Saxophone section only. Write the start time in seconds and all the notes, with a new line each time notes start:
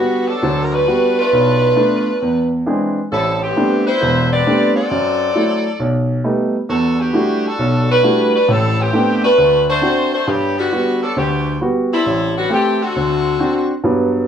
Already playing: D3 G3 B3 F#4
0.28 F#3 B3 D4 A4
0.63 A#4
0.73 G3 D4 F#4 B4
1.19 A3 D4 F4 B4
3.13 G3 C4 E4 A4
3.42 E3 B3 C4 G4
3.86 G3 E4 B4 C5
4.32 C4 G4 B4 D5
4.76 C4 F#4 A4 D5
6.70 G3 D4 F#4 A4
7.00 D3 B3 F#4 G4
7.46 G3 D4 F#4 A4
7.91 G3 D4 F#4 B4
8.35 G3 D4 F#4 B4
8.51 G3 C4 E4 A4
8.80 E3 B3 C4 G4
9.24 A3 D4 F#4 B4
9.70 A3 D4 F#4 C5
10.14 A3 D4 F#4 C5
10.29 D3 F#3 B3 G4
10.58 D3 G3 B3 F#4
11.02 F#3 B3 D4 A4
11.18 D3 B3 F#4 G4
11.92 G3 A3 C4 E4
12.37 D3 G3 B3 F#4
12.52 E3 A3 C4 G4
12.82 D3 A3 C4 F#4